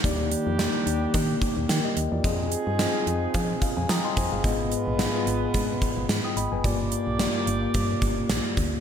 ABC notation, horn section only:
X:1
M:4/4
L:1/8
Q:"Swing 16ths" 1/4=109
K:Eb
V:1 name="Horn section"
[E,G,DG]6- [E,G,DG] z | [F,A,EA]6- [F,A,EA] z | [A,_CF_c]6- [A,CFc] z | [B,DGd]6- [B,DGd] z |]